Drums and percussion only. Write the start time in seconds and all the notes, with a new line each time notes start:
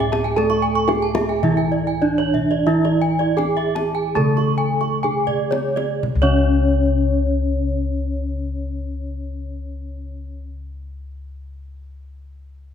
0.00 kendang slap
0.13 kendang high
0.25 kendang slap
0.38 kendang high
0.50 kendang slap
0.89 kendang high
1.15 kendang high, kendang low
1.43 kendang low
1.58 kendang slap
2.19 kendang slap
2.34 kendang low
2.52 kendang slap
2.85 kendang slap
3.20 kendang slap
3.38 kendang high, kendang low
3.57 kendang slap
3.76 kendang high
4.16 kendang low
4.38 kendang slap
4.81 kendang slap
5.04 kendang low
5.28 kendang low
5.52 kendang high
5.77 kendang high
6.03 kendang low